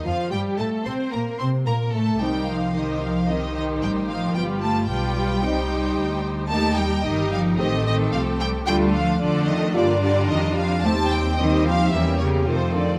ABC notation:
X:1
M:4/4
L:1/8
Q:1/4=111
K:Cdor
V:1 name="Violin section"
f g a c' b c' b a | g f e f e e g f | g a g4- g z | a g e f e e f g |
g f d e d d e f | a g e f =e ^c =c d |]
V:2 name="Violin section"
F G A c B c B A | [Gc]2 [Gc]2 [Gc]4 | [G=B]2 [GB]2 [Gc]4 | [GB]2 [GB]2 [GA]4 |
[FA]2 [FA]2 [FB]4 | [Gc]2 [Gc]2 [GB]2 [FA]2 |]
V:3 name="French horn section"
F, G, A, C B, C B, A, | [CE] z3 [CE] z3 | [=B,F] z3 [CE] z3 | [B,E] z3 [CG] z3 |
[A,F] z3 [B,F] z3 | [CE]2 [CE]2 [B,G]2 [A,F]2 |]
V:4 name="Viola section"
F, G, A, C B, C B, A, | [E,E]2 [E,E]2 [E,E]4 | [G,F]2 [G,F]2 [G,E]4 | [G,E]2 [G,E]2 [A,C]4 |
[A,D]2 [A,D]2 [G,D]4 | [G,C]2 [G,C]2 [G,^C]2 [E,=C]2 |]
V:5 name="Cello section" clef=bass
F, G, A, C B, C B, A, | G, F, E, F, E, E, G, F, | G, A, G,4- G, z | A, G, E, F, E, E, F, G, |
G, F, D, E, D, D, E, F, | A, G, E, F, =E, ^C, =C, D, |]
V:6 name="Double bass section" clef=bass
F,, G,, A,, C, B,, C, B,, A,, | C,,6 A,,,2 | G,,,2 =B,,,2 C,,2 D,,2 | E,,2 G,,,2 A,,,2 C,,2 |
D,,2 F,,2 G,,2 F,,2 | E,,4 =E,,2 F,,2 |]